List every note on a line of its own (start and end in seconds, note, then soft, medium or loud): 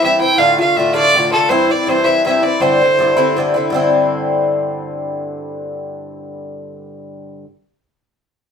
0.03 0.20 G2 medium
0.03 0.21 E3 medium
0.03 0.21 C4 medium
0.03 0.19 E4 medium
0.03 0.19 E5 medium
0.20 0.38 E3 soft
0.20 0.39 C4 medium
0.20 0.38 E4 medium
0.20 0.40 G5 loud
0.38 0.59 A2 medium
0.38 0.59 D3 medium
0.38 0.59 A3 medium
0.38 0.58 F4 medium
0.38 0.59 F5 loud
0.59 0.76 D3 soft
0.59 0.77 A3 soft
0.59 0.76 F4 medium
0.59 0.78 F5 medium
0.76 0.94 A2 medium
0.76 0.94 D3 medium
0.76 0.93 A3 medium
0.76 0.93 F4 medium
0.76 0.94 E5 medium
0.94 1.13 A2 medium
0.94 1.15 D3 medium
0.94 1.15 A3 medium
0.94 1.14 F4 medium
0.94 1.30 D5 loud
1.15 1.32 A2 medium
1.15 1.33 D3 medium
1.15 1.33 A3 medium
1.15 1.31 F4 medium
1.32 1.50 D3 medium
1.32 1.50 A3 medium
1.32 1.49 F4 medium
1.32 1.51 A4 medium
1.49 1.70 G2 medium
1.49 1.70 E3 medium
1.49 1.70 C4 loud
1.49 1.69 E4 medium
1.49 1.73 C5 loud
1.70 1.87 E3 soft
1.70 1.88 C4 soft
1.70 1.87 E4 medium
1.70 1.90 D5 medium
1.87 2.05 G2 medium
1.87 2.05 E3 medium
1.87 2.05 C4 medium
1.87 2.04 E4 medium
1.87 2.06 C5 loud
2.04 2.24 G2 medium
2.04 2.25 E3 medium
2.04 2.26 C4 medium
2.04 2.26 E4 medium
2.04 2.25 E5 loud
2.25 2.43 G2 medium
2.25 2.43 E3 medium
2.25 2.43 C4 medium
2.25 2.42 E4 medium
2.25 2.44 E5 medium
2.43 2.61 E3 soft
2.43 2.61 C4 medium
2.43 2.60 E4 medium
2.43 2.62 D5 medium
2.60 2.81 G2 medium
2.60 2.82 D3 medium
2.60 2.82 C4 medium
2.60 2.80 E4 medium
2.60 3.37 C5 loud
2.81 2.99 D3 soft
2.81 3.00 C4 medium
2.81 2.99 E4 medium
2.99 3.16 G2 medium
2.99 3.17 D3 medium
2.99 3.16 C4 medium
2.99 3.15 E4 medium
3.17 3.35 G2 medium
3.17 3.37 D3 medium
3.17 3.38 C4 medium
3.17 3.37 E4 medium
3.37 3.54 G2 medium
3.37 3.55 D3 medium
3.37 3.55 C4 medium
3.37 3.53 E4 medium
3.54 3.71 D3 medium
3.54 3.73 C4 medium
3.54 3.72 E4 medium
3.70 7.44 G2 medium
3.70 7.45 D3 medium
3.74 7.46 C4 medium
3.74 7.47 E4 medium